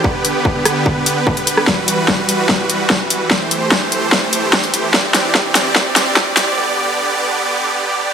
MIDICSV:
0, 0, Header, 1, 3, 480
1, 0, Start_track
1, 0, Tempo, 408163
1, 51, Time_signature, 4, 2, 24, 8
1, 9569, End_track
2, 0, Start_track
2, 0, Title_t, "Supersaw synth"
2, 0, Program_c, 0, 81
2, 0, Note_on_c, 0, 67, 79
2, 50, Note_on_c, 0, 59, 76
2, 50, Note_on_c, 0, 71, 97
2, 51, Note_on_c, 0, 50, 83
2, 1923, Note_off_c, 0, 67, 0
2, 1951, Note_off_c, 0, 50, 0
2, 1951, Note_off_c, 0, 59, 0
2, 1970, Note_on_c, 0, 55, 75
2, 1970, Note_on_c, 0, 66, 79
2, 1971, Note_on_c, 0, 52, 89
2, 3852, Note_off_c, 0, 71, 0
2, 3871, Note_off_c, 0, 55, 0
2, 3871, Note_off_c, 0, 66, 0
2, 3890, Note_on_c, 0, 57, 80
2, 3891, Note_on_c, 0, 72, 90
2, 5791, Note_off_c, 0, 57, 0
2, 5792, Note_off_c, 0, 72, 0
2, 5810, Note_on_c, 0, 60, 82
2, 5810, Note_on_c, 0, 74, 96
2, 7684, Note_off_c, 0, 52, 0
2, 7711, Note_off_c, 0, 60, 0
2, 7731, Note_on_c, 0, 50, 87
2, 7731, Note_on_c, 0, 59, 82
2, 9569, Note_off_c, 0, 50, 0
2, 9569, Note_off_c, 0, 59, 0
2, 9569, Note_off_c, 0, 74, 0
2, 9569, End_track
3, 0, Start_track
3, 0, Title_t, "Drums"
3, 50, Note_on_c, 9, 36, 91
3, 168, Note_off_c, 9, 36, 0
3, 290, Note_on_c, 9, 42, 75
3, 407, Note_off_c, 9, 42, 0
3, 530, Note_on_c, 9, 36, 96
3, 648, Note_off_c, 9, 36, 0
3, 770, Note_on_c, 9, 37, 57
3, 770, Note_on_c, 9, 42, 75
3, 888, Note_off_c, 9, 37, 0
3, 888, Note_off_c, 9, 42, 0
3, 1010, Note_on_c, 9, 36, 98
3, 1128, Note_off_c, 9, 36, 0
3, 1250, Note_on_c, 9, 42, 70
3, 1367, Note_off_c, 9, 42, 0
3, 1490, Note_on_c, 9, 36, 100
3, 1608, Note_off_c, 9, 36, 0
3, 1611, Note_on_c, 9, 42, 37
3, 1729, Note_off_c, 9, 42, 0
3, 1730, Note_on_c, 9, 42, 78
3, 1847, Note_off_c, 9, 42, 0
3, 1851, Note_on_c, 9, 37, 59
3, 1969, Note_off_c, 9, 37, 0
3, 1970, Note_on_c, 9, 36, 93
3, 1970, Note_on_c, 9, 38, 49
3, 2088, Note_off_c, 9, 36, 0
3, 2088, Note_off_c, 9, 38, 0
3, 2210, Note_on_c, 9, 42, 77
3, 2328, Note_off_c, 9, 42, 0
3, 2450, Note_on_c, 9, 36, 92
3, 2450, Note_on_c, 9, 38, 50
3, 2568, Note_off_c, 9, 36, 0
3, 2568, Note_off_c, 9, 38, 0
3, 2690, Note_on_c, 9, 42, 74
3, 2808, Note_off_c, 9, 42, 0
3, 2930, Note_on_c, 9, 36, 96
3, 2930, Note_on_c, 9, 38, 52
3, 3048, Note_off_c, 9, 36, 0
3, 3048, Note_off_c, 9, 38, 0
3, 3170, Note_on_c, 9, 42, 76
3, 3288, Note_off_c, 9, 42, 0
3, 3410, Note_on_c, 9, 36, 98
3, 3410, Note_on_c, 9, 38, 57
3, 3528, Note_off_c, 9, 36, 0
3, 3528, Note_off_c, 9, 38, 0
3, 3650, Note_on_c, 9, 42, 76
3, 3768, Note_off_c, 9, 42, 0
3, 3890, Note_on_c, 9, 36, 96
3, 3890, Note_on_c, 9, 38, 58
3, 4008, Note_off_c, 9, 36, 0
3, 4008, Note_off_c, 9, 38, 0
3, 4130, Note_on_c, 9, 42, 75
3, 4248, Note_off_c, 9, 42, 0
3, 4370, Note_on_c, 9, 36, 95
3, 4370, Note_on_c, 9, 38, 65
3, 4488, Note_off_c, 9, 36, 0
3, 4488, Note_off_c, 9, 38, 0
3, 4610, Note_on_c, 9, 42, 74
3, 4728, Note_off_c, 9, 42, 0
3, 4850, Note_on_c, 9, 36, 96
3, 4850, Note_on_c, 9, 38, 68
3, 4968, Note_off_c, 9, 36, 0
3, 4968, Note_off_c, 9, 38, 0
3, 5090, Note_on_c, 9, 42, 73
3, 5207, Note_off_c, 9, 42, 0
3, 5330, Note_on_c, 9, 36, 97
3, 5330, Note_on_c, 9, 38, 71
3, 5447, Note_off_c, 9, 38, 0
3, 5448, Note_off_c, 9, 36, 0
3, 5452, Note_on_c, 9, 42, 37
3, 5569, Note_off_c, 9, 42, 0
3, 5570, Note_on_c, 9, 42, 76
3, 5688, Note_off_c, 9, 42, 0
3, 5810, Note_on_c, 9, 38, 69
3, 5811, Note_on_c, 9, 36, 97
3, 5928, Note_off_c, 9, 36, 0
3, 5928, Note_off_c, 9, 38, 0
3, 6050, Note_on_c, 9, 38, 75
3, 6050, Note_on_c, 9, 42, 78
3, 6168, Note_off_c, 9, 38, 0
3, 6168, Note_off_c, 9, 42, 0
3, 6290, Note_on_c, 9, 38, 75
3, 6291, Note_on_c, 9, 36, 99
3, 6408, Note_off_c, 9, 36, 0
3, 6408, Note_off_c, 9, 38, 0
3, 6531, Note_on_c, 9, 38, 80
3, 6531, Note_on_c, 9, 42, 76
3, 6648, Note_off_c, 9, 38, 0
3, 6648, Note_off_c, 9, 42, 0
3, 6771, Note_on_c, 9, 36, 98
3, 6771, Note_on_c, 9, 38, 84
3, 6888, Note_off_c, 9, 36, 0
3, 6888, Note_off_c, 9, 38, 0
3, 7011, Note_on_c, 9, 38, 77
3, 7011, Note_on_c, 9, 42, 74
3, 7129, Note_off_c, 9, 38, 0
3, 7129, Note_off_c, 9, 42, 0
3, 7250, Note_on_c, 9, 38, 88
3, 7251, Note_on_c, 9, 36, 101
3, 7368, Note_off_c, 9, 36, 0
3, 7368, Note_off_c, 9, 38, 0
3, 7491, Note_on_c, 9, 38, 93
3, 7491, Note_on_c, 9, 42, 81
3, 7608, Note_off_c, 9, 38, 0
3, 7608, Note_off_c, 9, 42, 0
3, 9569, End_track
0, 0, End_of_file